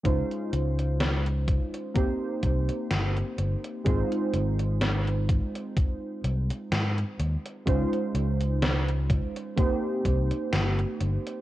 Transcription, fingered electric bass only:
X:1
M:4/4
L:1/8
Q:"Swing 16ths" 1/4=63
K:Dblyd
V:1 name="Fingered electric bass" clef=bass
D,, D,,2 z2 C,, G,,, G,,, | A,,, A,,,2 z2 C,, A,, E,, | D,, D,,2 z2 C,, G,,, G,,, |]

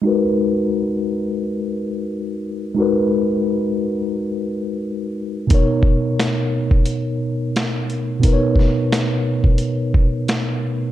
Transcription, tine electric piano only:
X:1
M:4/4
L:1/8
Q:"Swing 16ths" 1/4=88
K:G#m
V:1 name="Tine electric piano"
[G,DFAB]8 | [G,DFAB]8 | [B,,B,DAc]8 | [B,,B,DABc]8 |]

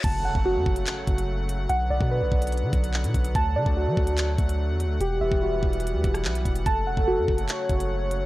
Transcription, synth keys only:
X:1
M:4/4
L:1/8
Q:1/4=145
K:F#phr
V:1 name="Synth keys"
a f F6 | f d B6 | a d F6 | G e F6 |
a f F6 |]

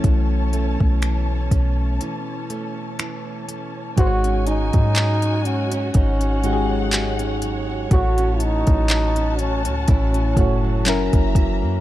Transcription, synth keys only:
X:1
M:4/4
L:1/8
Q:"Swing 16ths" 1/4=61
K:G#phr
V:1 name="Synth keys"
[E,A,CE]6- [E,A,CE] z | [G,,G,F^Bc]4 z [G,,G,F=G^G]3 | [A,,A,Fc]4 z [A,,A,Fc] [F,CE^A]2 |]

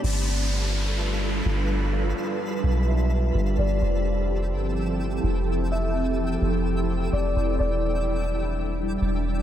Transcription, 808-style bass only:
X:1
M:4/4
L:1/8
Q:1/4=127
K:Gmix
V:1 name="808-style bass" clef=bass
G,,,6 G,,,2- | G,,, z2 B,,,3 G,,, G,,, | F,,,3 G,,,3 F,,,2- | F,,,3 F,,,3 F,,, F,,, |
E,,,6 E,,,2 |]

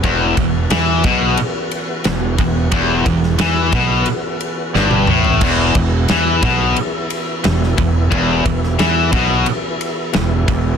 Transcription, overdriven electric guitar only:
X:1
M:4/4
L:1/8
Q:1/4=89
K:Clyd
V:1 name="Overdriven electric guitar" clef=bass
E,, E,, E, B,, z2 E,, E,, | E,, E,, E, B,, z2 G,, A,, | E,, E,, E, B,, z2 E,, E,, | E,, E,, E, B,, z2 E,, E,, |]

